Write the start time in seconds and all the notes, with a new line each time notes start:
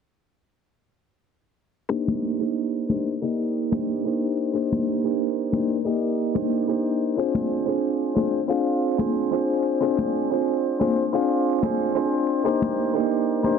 1.89 A#3 D4 D#4 G4 C5, shaker
2.08 high conga, shaker
2.39 A#3 D4 D#4 G4 C5, shaker
2.56 shaker
2.89 A#3 D4 D#4 G4 C5, high conga
3.07 shaker
3.21 A#3 D#4 G4 D5 D#5, shaker
3.71 A#3 D4 D#4 G4 C5, high conga, shaker
3.88 shaker
4.04 A#3 D4 D#4 G4 C5, shaker
4.38 shaker
4.53 A#3 D4 D#4 G4 C5, shaker
4.71 high conga, shaker
5.03 A#3 D4 D#4 G4 C5, shaker
5.20 shaker
5.37 shaker
5.52 A#3 D4 D#4 G4 C5, high conga
5.70 shaker
5.84 A#3 D#4 G4 D5 D#5, shaker
6.03 shaker
6.34 A#3 D4 D#4 G4 C5, high conga, shaker
6.53 shaker
6.67 A#3 D4 D#4 G4 C5, shaker
7.02 shaker
7.17 C4 D4 F4 G#4 C5, shaker
7.34 high conga, shaker
7.66 C4 D4 F4 G#4 C5, shaker
7.84 shaker
8.01 shaker
8.15 C4 D4 F4 G#4 C5, high conga
8.34 shaker
8.48 C4 D4 F4 G#4 F5, shaker
8.67 shaker
8.98 C4 D4 F4 G#4 C5, high conga, shaker
9.15 shaker
9.31 C4 D4 F4 G#4 C5, shaker
9.66 shaker
9.80 C4 D4 F4 G#4 C5, shaker
9.98 high conga, shaker
10.30 C4 D4 F4 G#4 C5, shaker
10.48 shaker
10.64 shaker
10.79 C4 D4 F4 G#4 C5, high conga
10.97 shaker
11.13 C4 D4 F4 G#4 F5, shaker
11.31 shaker
11.62 C4 D4 F4 G#4 C5, high conga, shaker
11.80 shaker
11.95 C4 D4 F4 G#4 C5, shaker
12.29 shaker
12.44 A#3 D4 D#4 G4 C5, shaker
12.62 high conga, shaker
12.93 A#3 D4 D#4 G4 C5, shaker
13.12 shaker
13.28 shaker
13.43 A#3 D4 D#4 G4 C5, high conga